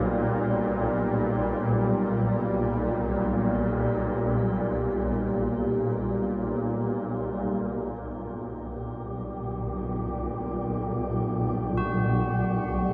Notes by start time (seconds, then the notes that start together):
Already playing: B1 A#2 G3 A#3 C4
7.93 B1 G2 A#2 G3 G4
9.10 D3
9.59 A3
11.77 F#4